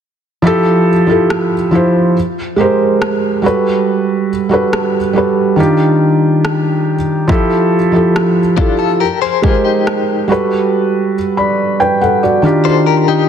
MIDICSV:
0, 0, Header, 1, 4, 480
1, 0, Start_track
1, 0, Tempo, 857143
1, 244, Time_signature, 4, 2, 24, 8
1, 7441, End_track
2, 0, Start_track
2, 0, Title_t, "Clean electric guitar"
2, 0, Program_c, 0, 27
2, 4803, Note_on_c, 0, 65, 68
2, 4805, Note_on_c, 0, 62, 60
2, 4917, Note_off_c, 0, 65, 0
2, 4919, Note_off_c, 0, 62, 0
2, 4921, Note_on_c, 0, 69, 71
2, 4925, Note_on_c, 0, 65, 62
2, 5036, Note_off_c, 0, 69, 0
2, 5038, Note_off_c, 0, 65, 0
2, 5042, Note_on_c, 0, 70, 83
2, 5045, Note_on_c, 0, 67, 69
2, 5157, Note_off_c, 0, 70, 0
2, 5159, Note_off_c, 0, 67, 0
2, 5161, Note_on_c, 0, 72, 77
2, 5165, Note_on_c, 0, 68, 65
2, 5276, Note_off_c, 0, 68, 0
2, 5277, Note_off_c, 0, 72, 0
2, 5282, Note_on_c, 0, 68, 78
2, 5286, Note_on_c, 0, 65, 65
2, 5397, Note_off_c, 0, 68, 0
2, 5399, Note_off_c, 0, 65, 0
2, 5402, Note_on_c, 0, 67, 69
2, 5404, Note_on_c, 0, 63, 55
2, 5745, Note_off_c, 0, 67, 0
2, 5746, Note_off_c, 0, 63, 0
2, 7084, Note_on_c, 0, 72, 67
2, 7088, Note_on_c, 0, 69, 54
2, 7198, Note_off_c, 0, 72, 0
2, 7200, Note_off_c, 0, 69, 0
2, 7204, Note_on_c, 0, 70, 80
2, 7207, Note_on_c, 0, 67, 66
2, 7318, Note_off_c, 0, 67, 0
2, 7318, Note_off_c, 0, 70, 0
2, 7325, Note_on_c, 0, 67, 76
2, 7328, Note_on_c, 0, 63, 66
2, 7438, Note_off_c, 0, 67, 0
2, 7440, Note_off_c, 0, 63, 0
2, 7441, End_track
3, 0, Start_track
3, 0, Title_t, "Felt piano"
3, 0, Program_c, 1, 0
3, 236, Note_on_c, 1, 53, 94
3, 244, Note_on_c, 1, 64, 89
3, 253, Note_on_c, 1, 67, 88
3, 261, Note_on_c, 1, 69, 115
3, 338, Control_c, 1, 64, 127
3, 497, Note_off_c, 1, 53, 0
3, 501, Note_off_c, 1, 64, 0
3, 505, Note_off_c, 1, 67, 0
3, 510, Note_off_c, 1, 69, 0
3, 597, Note_on_c, 1, 53, 71
3, 604, Note_on_c, 1, 64, 63
3, 613, Note_on_c, 1, 67, 61
3, 621, Note_on_c, 1, 69, 77
3, 858, Note_off_c, 1, 53, 0
3, 861, Note_off_c, 1, 64, 0
3, 865, Note_off_c, 1, 67, 0
3, 870, Note_off_c, 1, 69, 0
3, 958, Note_on_c, 1, 53, 76
3, 966, Note_on_c, 1, 64, 71
3, 974, Note_on_c, 1, 67, 66
3, 981, Note_on_c, 1, 72, 81
3, 1201, Note_off_c, 1, 53, 0
3, 1205, Note_off_c, 1, 64, 0
3, 1209, Note_off_c, 1, 67, 0
3, 1211, Control_c, 1, 64, 0
3, 1213, Note_off_c, 1, 72, 0
3, 1325, Control_c, 1, 64, 127
3, 1435, Note_on_c, 1, 56, 73
3, 1444, Note_on_c, 1, 67, 70
3, 1452, Note_on_c, 1, 70, 70
3, 1459, Note_on_c, 1, 72, 84
3, 1915, Note_on_c, 1, 55, 73
3, 1920, Note_off_c, 1, 56, 0
3, 1923, Note_on_c, 1, 66, 72
3, 1924, Note_off_c, 1, 67, 0
3, 1928, Note_off_c, 1, 70, 0
3, 1930, Control_c, 1, 64, 0
3, 1931, Note_on_c, 1, 69, 73
3, 1932, Note_off_c, 1, 72, 0
3, 1939, Note_on_c, 1, 71, 88
3, 2040, Control_c, 1, 64, 127
3, 2399, Note_off_c, 1, 55, 0
3, 2403, Note_off_c, 1, 66, 0
3, 2407, Note_off_c, 1, 69, 0
3, 2412, Note_off_c, 1, 71, 0
3, 2516, Note_on_c, 1, 55, 73
3, 2524, Note_on_c, 1, 66, 69
3, 2531, Note_on_c, 1, 69, 69
3, 2539, Note_on_c, 1, 71, 84
3, 2777, Note_off_c, 1, 55, 0
3, 2781, Note_off_c, 1, 66, 0
3, 2784, Note_off_c, 1, 69, 0
3, 2788, Note_off_c, 1, 71, 0
3, 2874, Note_on_c, 1, 55, 77
3, 2882, Note_on_c, 1, 66, 65
3, 2890, Note_on_c, 1, 69, 69
3, 2899, Note_on_c, 1, 71, 78
3, 3114, Note_on_c, 1, 51, 79
3, 3119, Note_off_c, 1, 55, 0
3, 3121, Note_on_c, 1, 62, 74
3, 3123, Note_off_c, 1, 66, 0
3, 3127, Note_off_c, 1, 69, 0
3, 3129, Note_on_c, 1, 65, 75
3, 3131, Note_off_c, 1, 71, 0
3, 3132, Control_c, 1, 64, 0
3, 3136, Note_on_c, 1, 67, 90
3, 3219, Control_c, 1, 64, 127
3, 3887, Note_off_c, 1, 51, 0
3, 3891, Note_off_c, 1, 62, 0
3, 3894, Note_off_c, 1, 65, 0
3, 3898, Note_off_c, 1, 67, 0
3, 4074, Note_on_c, 1, 53, 100
3, 4083, Note_on_c, 1, 64, 94
3, 4090, Control_c, 1, 64, 0
3, 4091, Note_on_c, 1, 67, 90
3, 4097, Note_on_c, 1, 69, 108
3, 4186, Control_c, 1, 64, 127
3, 4336, Note_off_c, 1, 53, 0
3, 4341, Note_off_c, 1, 64, 0
3, 4344, Note_off_c, 1, 67, 0
3, 4348, Note_off_c, 1, 69, 0
3, 4434, Note_on_c, 1, 53, 73
3, 4442, Note_on_c, 1, 64, 67
3, 4450, Note_on_c, 1, 67, 65
3, 4457, Note_on_c, 1, 69, 79
3, 4696, Note_off_c, 1, 53, 0
3, 4700, Note_off_c, 1, 64, 0
3, 4704, Note_off_c, 1, 67, 0
3, 4708, Note_off_c, 1, 69, 0
3, 4795, Note_on_c, 1, 53, 75
3, 4803, Note_on_c, 1, 64, 69
3, 4811, Note_on_c, 1, 67, 69
3, 4819, Note_on_c, 1, 69, 86
3, 5040, Note_off_c, 1, 53, 0
3, 5043, Note_off_c, 1, 64, 0
3, 5048, Note_off_c, 1, 67, 0
3, 5050, Control_c, 1, 64, 0
3, 5052, Note_off_c, 1, 69, 0
3, 5158, Control_c, 1, 64, 127
3, 5275, Note_on_c, 1, 56, 75
3, 5284, Note_on_c, 1, 67, 71
3, 5292, Note_on_c, 1, 70, 69
3, 5300, Note_on_c, 1, 72, 86
3, 5755, Note_on_c, 1, 55, 80
3, 5760, Note_off_c, 1, 56, 0
3, 5762, Note_on_c, 1, 66, 76
3, 5764, Note_off_c, 1, 67, 0
3, 5768, Note_off_c, 1, 70, 0
3, 5770, Note_on_c, 1, 69, 75
3, 5772, Note_off_c, 1, 72, 0
3, 5772, Control_c, 1, 64, 0
3, 5778, Note_on_c, 1, 71, 88
3, 5874, Control_c, 1, 64, 127
3, 6239, Note_off_c, 1, 55, 0
3, 6243, Note_off_c, 1, 66, 0
3, 6247, Note_off_c, 1, 69, 0
3, 6251, Note_off_c, 1, 71, 0
3, 6369, Note_on_c, 1, 83, 59
3, 6372, Note_on_c, 1, 74, 50
3, 6595, Note_off_c, 1, 83, 0
3, 6596, Note_off_c, 1, 74, 0
3, 6608, Note_on_c, 1, 79, 72
3, 6611, Note_on_c, 1, 71, 58
3, 6720, Note_off_c, 1, 79, 0
3, 6722, Note_off_c, 1, 71, 0
3, 6727, Note_on_c, 1, 78, 63
3, 6731, Note_on_c, 1, 69, 52
3, 6840, Note_off_c, 1, 78, 0
3, 6842, Note_off_c, 1, 69, 0
3, 6849, Note_on_c, 1, 74, 59
3, 6852, Note_on_c, 1, 66, 49
3, 6956, Note_on_c, 1, 51, 77
3, 6963, Note_on_c, 1, 62, 72
3, 6971, Control_c, 1, 64, 0
3, 6971, Note_on_c, 1, 65, 75
3, 6979, Note_on_c, 1, 67, 87
3, 7074, Note_off_c, 1, 74, 0
3, 7074, Control_c, 1, 64, 127
3, 7076, Note_off_c, 1, 66, 0
3, 7441, Note_off_c, 1, 51, 0
3, 7441, Note_off_c, 1, 62, 0
3, 7441, Note_off_c, 1, 65, 0
3, 7441, Note_off_c, 1, 67, 0
3, 7441, End_track
4, 0, Start_track
4, 0, Title_t, "Drums"
4, 730, Note_on_c, 9, 37, 95
4, 786, Note_off_c, 9, 37, 0
4, 1689, Note_on_c, 9, 37, 99
4, 1745, Note_off_c, 9, 37, 0
4, 2649, Note_on_c, 9, 37, 101
4, 2705, Note_off_c, 9, 37, 0
4, 3610, Note_on_c, 9, 37, 96
4, 3666, Note_off_c, 9, 37, 0
4, 4084, Note_on_c, 9, 36, 105
4, 4140, Note_off_c, 9, 36, 0
4, 4569, Note_on_c, 9, 37, 106
4, 4625, Note_off_c, 9, 37, 0
4, 4803, Note_on_c, 9, 36, 86
4, 4859, Note_off_c, 9, 36, 0
4, 5284, Note_on_c, 9, 36, 79
4, 5340, Note_off_c, 9, 36, 0
4, 5528, Note_on_c, 9, 37, 97
4, 5584, Note_off_c, 9, 37, 0
4, 7441, End_track
0, 0, End_of_file